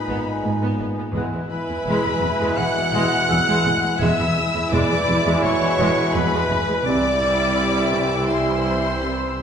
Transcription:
Already playing: A#2 G#3 D#4 B4 D#5 G#5 B5
0.07 G#1 G#2 G#3 B3
0.43 G#1 G#2 B3
0.62 G#2 B3
0.79 G#1 G#2 B3
0.98 G#2 B3
1.13 E1 E2 B2 E3 G#3 E4 B4 E5 G#5
1.17 F#5 F#6
1.33 E2 G#3
1.49 E2 B4 B5
1.69 E2 G#3
1.85 E1 E2 G#3
2.05 E2 G#3
2.22 E1 E2 G#3
2.39 E2 G#3
2.57 E1 E2 E3 G#3 F#5 F#6
2.75 E2 G#3
2.93 E1 E2 E3 G#3
3.28 E1 E2 G#3 E6
3.47 E2 G#3
3.64 E1 E2 G#3
3.82 E2 G#3
3.99 E1 E2 B2 E3 G#3 E4 B4 E5 G#5 E6 G#6
4.19 E2 G#3
4.36 E2
4.54 E2 G#3
4.71 E1 E2 G#3 D5 D6
4.90 E2 G#3
5.06 E1 E2 G#3
5.25 E2 G#3
5.42 E1 E2 E3 G#3 C#5 C#6
5.60 E2 G#3
5.78 E1 E2 E3 G#3
6.14 E1 E2 G#3 B4 B5
6.32 E2 G#3
6.49 E1 E2 G#3
6.67 E2 G#3
6.84 C2 C3 E3 G3 E4 C5 D5 E5 G5 C6 D6 E6
7.21 C3
7.56 C3
7.93 C3
8.28 G3 C4 E4 C5 C6
8.65 C4
9.00 C3
9.36 C3

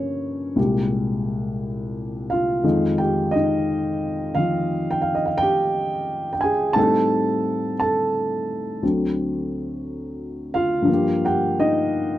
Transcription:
Already playing: G2 F3 A#3 C#4 C#5
0.56 C2 A#2 G#3 G4
2.30 F4 F5
2.64 F2 D#3 G#3 D#4
2.98 G4 G5
3.31 D#4 D#5
4.35 D#3 F3 F4 F5
4.91 G5
5.02 F5
5.15 D#5
5.26 F5
5.38 G5
5.42 G4
6.33 G5
6.41 G#4 G#5
6.73 A2 G3 C4 D#4 A5
6.78 A4
7.80 A4 A5
8.82 D2 D3 F#3 C4
10.54 F4 F5
10.82 G2 F3
10.89 A#3
10.93 G4
11.25 G4 F#5 G5
11.60 D#4 D#5

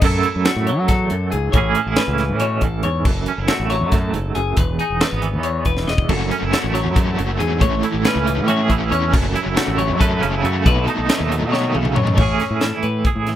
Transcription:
0.01 F#2 F#3 A3 E4 A4, kick, crash
0.06 A4
0.23 E4, closed hi-hat
0.36 F#2
0.45 A3 F#4, snare, closed hi-hat
0.56 A2
0.67 F#3 C#5, closed hi-hat
0.78 F#3
0.88 E2 A4, kick, snare, closed hi-hat
1.10 F#2, closed hi-hat
1.31 C#2 G#2 G#4, closed hi-hat
1.52 A1 A2 E3 C#5, kick, closed hi-hat
1.56 C#4 E4 G#4
1.75 C#4 A4, closed hi-hat
1.87 A1 E4
1.96 C#4 B4, snare, closed hi-hat
2.08 C#2
2.18 E3, snare, closed hi-hat
2.29 A2
2.40 B2 C#5, closed hi-hat
2.61 A1 A2 A4, kick, closed hi-hat
2.83 E2 G#2 C#5, closed hi-hat
3.05 F#1 F#2 A4, kick, crash
3.26 C#4, closed hi-hat
3.38 F#1 E4
3.47 A3 F#4, snare, closed hi-hat
3.60 A1
3.70 F#3 C#5, snare, closed hi-hat
3.81 F#2
3.92 A2 A4, kick, snare, closed hi-hat
4.14 F#1 G#2, closed hi-hat
4.35 F#1 F#2 G#4, closed hi-hat
4.57 E1 E2 B4, kick, closed hi-hat
4.79 D#4 G#4, closed hi-hat
4.90 E1
5.01 A3 B4, snare, closed hi-hat
5.11 G#1 B3
5.22 E3, closed hi-hat
5.34 E2
5.43 C#5, closed hi-hat
5.65 E1 B4, kick, closed hi-hat
5.77 snare
5.87 E1 E2 D#5, snare
5.98 kick
6.09 F#1 F#2 F#3 A3 C#4 F#4 A4, kick, crash
6.31 A3 C#4 F#4, closed hi-hat
6.43 F#1 E4
6.52 F#3 A3 C#4 F#4, snare, closed hi-hat
6.64 A1
6.74 F#3 A3 C#4 F#4 C#5, snare, closed hi-hat
6.85 F#2
6.95 E2 F#3 A3 C#4 F#4 A4, kick, closed hi-hat
7.17 F#1 F#2 A3 C#4 F#4, closed hi-hat
7.39 E2 G#2 F#3 A3 C#4 F#4 G#4, closed hi-hat
7.60 A1 A2 E3 A3 C#4 E4 C#5, kick, closed hi-hat
7.82 A3 C#4 E4 A4, closed hi-hat
7.94 A1
8.03 E3 A3 C#4 E4 B4, snare, closed hi-hat
8.16 C#2
8.25 E3 A3 C#4 E4, closed hi-hat
8.38 A2
8.47 A2 E3 A3 C#4 E4 F#4 C#5, closed hi-hat
8.60 G#4
8.69 A1 E3 A3 C#4 E4 A4, kick, closed hi-hat
8.90 E2 E3 A3 C#4 E4 C#5, closed hi-hat
9.13 F#1 F#2 C#3 F#3 A3 C#4 A4, kick, crash
9.35 F#3 A3 C#4 E4, closed hi-hat
9.46 F#1
9.56 C#3 F#3 A3 C#4 F#4, snare, closed hi-hat
9.68 A1
9.78 F#3 A3 C#4 C#5, closed hi-hat
9.90 F#2
9.99 F#2 C#3 F#3 A3 C#4 A4 B4, kick, closed hi-hat
10.21 F#1 C#3 F#3 A3 C#4, closed hi-hat
10.33 E4
10.43 F#2 C#3 F#3 A3 C#4 F#4, closed hi-hat
10.64 B1 B2 F#3 A3 D#4 B4, kick, closed hi-hat
10.86 F#3 A3 D#4 A4, closed hi-hat
10.99 B1
11.09 B2 F#3 A3 D#4 B4, snare, closed hi-hat
11.20 D#2
11.31 F#3 A3 D#4, closed hi-hat
11.42 B2
11.52 B2 D#3 F#3 A3 D#4 C#5, snare
11.74 B1 C#3 F#3 A3 D#4 A4, high tom
11.85 mid tom
11.95 F#2 B2 F#3 A3 D#4 C#5, mid tom
12.07 floor tom
12.17 A1 A2 E3 C#4 C#5, kick, crash
12.22 E4 G#4
12.40 C#4, snare, closed hi-hat
12.51 A2
12.61 E3 C#4 A4, snare, closed hi-hat
12.73 E4
12.83 A2 B4, closed hi-hat
13.05 G#4, kick, closed hi-hat
13.16 A2
13.27 E3, snare, closed hi-hat

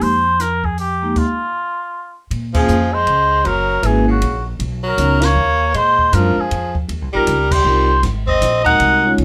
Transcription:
0.01 F2 C5, kick, open hi-hat
0.40 A#4, snare, closed hi-hat
0.64 G#4, kick
0.78 G4, open hi-hat
1.02 G#3 A#3 D#4 G4
1.16 F4, kick, crash
2.31 A#2, kick, ride
2.54 F3 A#3 C4 C#4 F4 G#4, kick, crash
2.68 F2, hi-hat pedal
2.93 G#3 C5
3.06 C#2, kick, ride
3.45 F#1 F#3 A#4, kick, ride
3.83 G#1 E3 A#3 C#4 E4 F#4 G#4, kick, hi-hat pedal, ride
4.08 C#3 F#4
4.21 A#1, kick, ride
4.59 B1, kick, ride
4.83 F#3 A#4
4.98 C#2 B3 C#4 D#4 F#4 A#4, kick, hi-hat pedal, ride
5.21 A#3 C#5, snare, ride
5.36 D#2
5.74 A#2 G#3 C5, kick, ride
5.99 kick
6.12 F#2 F3 G#3 C4 D4 F4 A#4, kick, hi-hat pedal, ride
6.37 F3 G#4, muted upright bass stroke
6.51 F2, kick, ride
6.75 kick
6.89 D#2, kick, ride
7.02 C2
7.13 A#1 G3 C4 D#4 F4 A#4
7.27 C#2, kick, hi-hat pedal, ride
7.51 G3 C5, kick, crash
7.65 C2 G3 C4 D#4 F4 A#4
8.03 G#1, kick, snare, ride
8.27 C4 D#5, kick
8.41 A#1, snare, hi-hat pedal, ride
8.64 G#3 C4 D#4 F#4 A#4 F#5, kick, ride
8.80 C2, kick, ride
9.04 G#3 C#4 D#4 F4 C#5
9.18 C#2, kick, ride

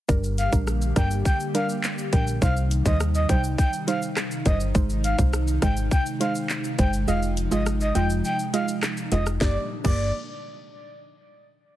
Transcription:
0.09 G1 D3 G3 A#3 D4 G4 A#4, kick, shaker
0.23 shaker
0.38 F5, closed hi-hat, shaker
0.52 A#1 G3 D4 A#4, kick, shaker
0.67 cross-stick, shaker
0.82 shaker
0.96 G1 G3 D4 A#4 G5, kick, cross-stick, closed hi-hat, shaker
1.11 shaker
1.25 G5, kick, shaker
1.40 shaker
1.54 G3 D4 A#4 F5, closed hi-hat, shaker
1.69 shaker
1.84 clap, shaker
1.98 shaker
2.12 A#1 G3 D4 A#4 G5, kick, closed hi-hat, shaker
2.27 shaker
2.42 C2 C3 D#3 G3 D#4 C5 F5, kick, shaker
2.57 shaker
2.71 closed hi-hat, shaker
2.85 D#2 G3 D#4 C5 D#5, kick, shaker
3.00 cross-stick, shaker
3.15 D#5, shaker
3.29 C2 G3 D#4 C5 G5, kick, closed hi-hat, shaker
3.44 shaker
3.58 G5, kick, shaker
3.73 shaker
3.87 G3 D#4 C5 F5, closed hi-hat, shaker
4.02 shaker
4.17 cross-stick, clap, shaker
4.31 shaker
4.45 G1 G3 D#4 C5 D#5, kick, closed hi-hat, high timbale, shaker
4.60 shaker
4.75 G#1 G#3 D#4 C5, kick, shaker
4.89 shaker
5.04 F5, closed hi-hat, shaker
5.18 C2 G#3 D#4 C5, kick, shaker
5.33 cross-stick, shaker
5.48 shaker
5.62 G#1 G#3 D#4 C5 G5, kick, cross-stick, closed hi-hat, shaker
5.77 shaker
5.91 G5, kick, shaker
6.06 shaker
6.20 G#3 D#4 C5 F5, closed hi-hat, shaker
6.35 shaker
6.50 clap, shaker
6.64 shaker
6.78 G1 G#3 D#4 C5 G5, kick, closed hi-hat, shaker
6.93 shaker
7.08 F1 F3 G#3 F4 D#5 F5, shaker
7.22 shaker
7.37 closed hi-hat, shaker
7.51 G#1 G#3 F4 D#5, shaker
7.66 cross-stick, shaker
7.81 D#5, shaker
7.95 F1 G#3 F4 D#5 G5, closed hi-hat, shaker
8.10 shaker
8.24 G5, shaker
8.39 shaker
8.53 G#3 F4 D#5 F5, closed hi-hat, shaker
8.68 shaker
8.83 cross-stick, clap, shaker
8.97 shaker
9.12 F1 G#3 F4 D#5, closed hi-hat, high timbale, shaker
9.26 cross-stick, shaker
9.40 G1 A#2 D3 G3 A#3 D4 G4 D5, kick, snare, shaker
9.84 G1 A#3 G4 D5, kick, crash, shaker

